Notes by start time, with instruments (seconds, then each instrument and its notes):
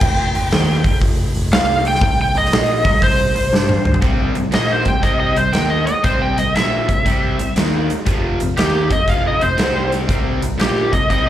Already playing: electric slide guitar G5
0.01 picked electric bass F1, kick, crash
0.35 picked electric bass F1, open hi-hat
0.51 picked electric bass D#2, snare, open hi-hat
0.84 picked electric bass F1, kick, open hi-hat
1.01 picked electric bass F1, kick, open hi-hat
1.35 picked electric bass F1, open hi-hat
1.51 picked electric bass C2, electric slide guitar F5, snare, open hi-hat
1.85 electric slide guitar G5, open hi-hat
1.95 snare
2.01 picked electric bass C2, kick, open hi-hat
2.21 electric slide guitar G5
2.35 picked electric bass C2, electric slide guitar D#5, open hi-hat
2.45 snare
2.52 picked electric bass A#1, snare, open hi-hat
2.85 picked electric bass C2, kick, open hi-hat
3.02 picked electric bass C2, electric slide guitar C5, kick, open hi-hat
3.35 picked electric bass C2, open hi-hat
3.53 picked electric bass G2, snare
3.69 high tom
3.85 mid tom
3.94 floor tom
4.02 picked electric bass C2, overdriven electric guitar C3 G3 C4, kick, closed hi-hat
4.35 picked electric bass C2, overdriven electric guitar C3 G3, closed hi-hat
4.51 picked electric bass A#1, overdriven electric guitar A#2 F3 A#3, electric slide guitar D#5, snare, closed hi-hat
4.72 electric slide guitar C5
4.85 picked electric bass C2, overdriven electric guitar C3 G3, electric slide guitar G5, kick, closed hi-hat
5.03 picked electric bass C2, overdriven electric guitar C3 G3 C4, electric slide guitar D#5, kick, closed hi-hat
5.20 electric slide guitar D#5
5.36 picked electric bass C2, overdriven electric guitar C3 G3, electric slide guitar C5, closed hi-hat
5.52 picked electric bass D#2, overdriven electric guitar D#3 A#3 D#4, electric slide guitar G5, snare, closed hi-hat
5.70 electric slide guitar D#5
5.86 electric slide guitar D#5, muted overdriven electric guitar stroke, muted picked electric bass stroke, closed hi-hat
6.03 picked electric bass C2, overdriven electric guitar C3 G3 C4, electric slide guitar C5, kick, closed hi-hat
6.22 electric slide guitar G5
6.37 picked electric bass C2, overdriven electric guitar C3 G3, electric slide guitar D#5, closed hi-hat
6.55 picked electric bass A#1, overdriven electric guitar A#2 F3 A#3, electric slide guitar E5, snare, closed hi-hat
6.89 picked electric bass C2, overdriven electric guitar C3 G3, kick, closed hi-hat
7.05 picked electric bass C2, overdriven electric guitar C3 G3 C4, kick, closed hi-hat
7.39 picked electric bass C2, overdriven electric guitar C3 G3, closed hi-hat
7.56 picked electric bass D#2, overdriven electric guitar D#3 A#3 D#4, snare, closed hi-hat
7.90 muted overdriven electric guitar stroke, muted picked electric bass stroke, closed hi-hat
8.06 picked electric bass F1, overdriven electric guitar F2 C3 F3, kick, closed hi-hat
8.40 picked electric bass F1, overdriven electric guitar F2 C3, closed hi-hat
8.56 picked electric bass D#2, overdriven electric guitar D#3 A#3 D#4, electric slide guitar G4, snare, closed hi-hat
8.90 picked electric bass F1, overdriven electric guitar F2 C3, electric slide guitar D#5, kick, closed hi-hat
9.08 picked electric bass F1, overdriven electric guitar F2 C3 F3, electric slide guitar F5, kick, closed hi-hat
9.28 electric slide guitar D#5
9.41 picked electric bass F1, overdriven electric guitar F2 C3, electric slide guitar C5, closed hi-hat
9.57 picked electric bass C2, overdriven electric guitar C3 G3 C4, snare, closed hi-hat
9.92 closed hi-hat
10.08 picked electric bass C2, overdriven electric guitar C3 G3 C4, kick, closed hi-hat
10.42 picked electric bass C2, overdriven electric guitar C3 G3, closed hi-hat
10.58 picked electric bass A#1, overdriven electric guitar A#2 F3 A#3, electric slide guitar G4, snare, closed hi-hat
10.92 picked electric bass C2, overdriven electric guitar C3 G3, electric slide guitar D#5, kick, closed hi-hat
11.10 picked electric bass C2, overdriven electric guitar C3 G3 C4, electric slide guitar D#5, kick, closed hi-hat